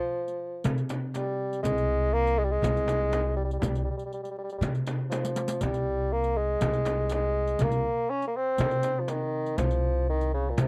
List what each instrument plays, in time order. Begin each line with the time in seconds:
Already playing: bassoon F3
0.16 darbuka ka
0.28 riq
0.40 darbuka ka
0.64 upright bass C3, riq, darbuka dum, frame drum
0.78 riq
0.89 riq, darbuka tek, frame drum
1.14 bassoon G3, riq, darbuka tek, frame drum
1.53 riq
1.63 upright bass C2, bassoon G#3, riq, darbuka dum, frame drum
1.77 riq, darbuka ka
2.13 bassoon A#3, darbuka ka
2.27 riq
2.38 bassoon G#3
2.44 bassoon G3
2.51 bassoon G#3
2.62 upright bass C2, riq, darbuka dum, frame drum
2.77 riq
2.88 riq, darbuka tek, frame drum
3.13 riq, darbuka tek, frame drum
3.37 bassoon G3
3.45 bassoon G3
3.51 bassoon G3, riq
3.59 upright bass C2, bassoon G3, riq, frame drum, darbuka dum
3.69 bassoon G3
3.75 bassoon G3, riq, darbuka ka
3.84 bassoon G3
3.91 bassoon G3
3.97 bassoon G3, riq, darbuka ka
4.06 bassoon G3
4.12 bassoon G3, riq, darbuka ka
4.23 bassoon G3, riq, darbuka ka
4.31 bassoon G3
4.36 bassoon G3, darbuka ka
4.44 bassoon G3
4.50 bassoon G3, riq, darbuka ka
4.58 upright bass C3, bassoon G3, darbuka dum
4.62 bassoon G3, riq, frame drum
4.75 riq, darbuka ka
4.87 riq, frame drum
5.10 bassoon F3, riq, darbuka tek, frame drum
5.24 riq, darbuka ka
5.36 riq, darbuka tek
5.48 riq, darbuka ka
5.61 upright bass C2, bassoon G3, riq, darbuka dum, frame drum
5.74 riq, darbuka ka
6.11 bassoon A#3, darbuka ka
6.24 riq
6.36 bassoon G#3, darbuka ka
6.61 upright bass C2, riq, darbuka dum, frame drum
6.73 riq
6.85 riq, darbuka tek, frame drum
7.09 riq, darbuka tek, frame drum
7.14 bassoon G#3
7.47 riq
7.59 upright bass C2, riq, darbuka dum, frame drum
7.63 bassoon A#3
7.71 riq
8.10 bassoon C#4, darbuka ka
8.22 riq
8.28 bassoon A#3
8.34 bassoon C4, darbuka ka
8.58 upright bass C3, riq, darbuka dum, frame drum
8.71 riq
8.83 riq, frame drum
9.00 bassoon F3
9.08 bassoon D#3, riq, darbuka tek, frame drum
9.46 riq
9.58 upright bass C2, bassoon F3, riq, darbuka dum, frame drum
9.71 riq
10.08 bassoon D#3, darbuka ka
10.21 riq
10.33 bassoon C#3, darbuka ka
10.50 bassoon A#2
10.57 upright bass C2, bassoon C3, riq, darbuka dum, frame drum